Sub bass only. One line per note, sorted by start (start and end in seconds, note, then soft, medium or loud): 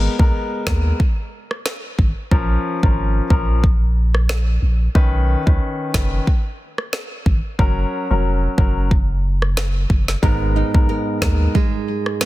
0.19 0.31 B1 medium
0.67 0.93 D#2 medium
1.99 2.13 G#1 medium
2.31 2.57 A#1 loud
2.83 3.20 G#1 medium
3.30 4.58 A#1 medium
4.62 4.88 A#1 medium
4.95 5.36 B1 loud
5.47 5.58 C#2 medium
5.94 6.20 F#1 medium
7.26 7.41 G#1 medium
7.59 7.85 F#1 loud
8.11 8.48 F1 medium
8.58 9.86 F#1 medium
9.90 10.16 F#1 medium
10.23 10.63 G#1 loud
10.75 10.86 B1 medium
11.22 11.48 D#2 medium